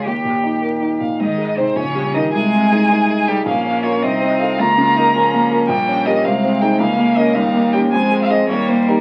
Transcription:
<<
  \new Staff \with { instrumentName = "Violin" } { \time 6/8 \key aes \major \tempo 4. = 107 g'4. r4 f''8 | ees''4 c''8 des''4 ees''8 | aes''2~ aes''8 g''8 | f''4 des''8 ees''4 f''8 |
bes''2~ bes''8 r8 | g''4 ees''8 f''4 g''8 | f''4 ees''8 f''4 g''8 | aes''8. f''16 ees''8 des''8 c''8 bes'8 | }
  \new Staff \with { instrumentName = "Grand piano" } { \time 6/8 \key aes \major ees,8 bes,8 ees'8 bes'8 ees'8 bes,8 | aes,8 aes8 <ees' c''>8 bes,,8 g8 <ees' bes'>8 | c,8 c8 <ees' aes'>8 <ees' aes'>8 aes8 <ees' aes'>8 | bes,,8 des'8 <f' bes'>8 c,8 c'8 <f' a'>8 |
des,8 des8 <f' bes'>8 <f' bes'>8 bes8 <f' bes'>8 | bes,,8 des'8 <g' bes'>8 c,8 c'8 <ees' aes'>8 | des,8 bes8 <des' bes'>8 ees,8 bes8 <des' g'>8 | f,8 aes8 <c' aes'>8 ees,8 bes8 <ees' g'>8 | }
  \new Staff \with { instrumentName = "Violin" } { \time 6/8 \key aes \major r2. | ees'4 c'8 des'4 ees'8 | aes'2~ aes'8 g'8 | des'4. ees'4. |
f'8 f'8 ees'8 des'4. | bes4. c'4. | des'4. ees'4. | c'4. bes4. | }
  \new Staff \with { instrumentName = "Cello" } { \clef bass \time 6/8 \key aes \major g'2~ g'16 r8. | ees4 c8 des4 ees8 | aes2~ aes8 g8 | bes4. c'4. |
bes4. f4. | g4. aes4. | bes4. g4. | aes4. g4. | }
>>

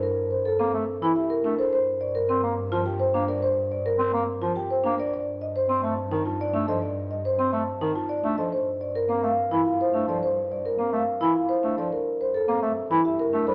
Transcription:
<<
  \new Staff \with { instrumentName = "Marimba" } { \time 3/4 \key g \dorian \tempo 4 = 106 bes'16 r16 c''16 a'16 r4 e''16 bes'16 r16 c''16 | c''16 r16 d''16 bes'16 r4 g''16 c''16 r16 d''16 | c''16 r16 d''16 bes'16 r4 g''16 c''16 r16 d''16 | d''16 r16 ees''16 c''16 r16 a''16 r8 a''16 d''16 r16 ees''16 |
d''16 r16 ees''16 c''16 r16 a''16 r8 a''16 d''16 r16 ees''16 | c''16 r16 d''16 bes'16 r16 f''16 r8 f''16 c''16 r16 d''16 | c''16 r16 d''16 bes'16 r16 f''16 r8 f''16 c''16 r16 d''16 | bes'16 r16 c''16 a'16 r16 e''16 r8 e''16 bes'16 r16 c''16 | }
  \new Staff \with { instrumentName = "Marimba" } { \time 3/4 \key g \dorian r4 c'16 r8 e'16 r8 d'16 a'16 | r4 c'16 r8 f'16 g'16 r16 d'16 bes'16 | r4 c'16 r8 f'16 g'16 r16 d'16 bes'16 | r4 c'16 r8 ees'16 f'16 r16 d'16 a'16 |
r4 c'16 r8 ees'16 f'16 r16 d'16 a'16 | r4 c'16 r8 e'16 r8 d'16 a'16 | r4 c'16 r8 e'16 r8 d'16 a'16 | r4 c'16 r8 e'16 g'16 r16 d'16 a'16 | }
  \new Staff \with { instrumentName = "Bass clarinet" } { \time 3/4 \key g \dorian r4 bes16 a16 r16 e16 r8 a16 r16 | r4 c'16 bes16 r16 f16 r8 bes16 r16 | r4 c'16 bes16 r16 f16 r8 bes16 r16 | r4 c'16 a16 r16 ees16 r8 a16 f16 |
r4 c'16 a16 r16 ees16 r8 a16 f16 | r4 bes16 a16 r16 e16 r8 a16 f16 | r4 bes16 a16 r16 e16 r8 a16 f16 | r4 bes16 a16 r16 e16 r8 a16 g16 | }
  \new Staff \with { instrumentName = "Double bass section" } { \clef bass \time 3/4 \key g \dorian g,2. | g,2.~ | g,2. | g,2.~ |
g,2. | g,2.~ | g,2. | g,2. | }
>>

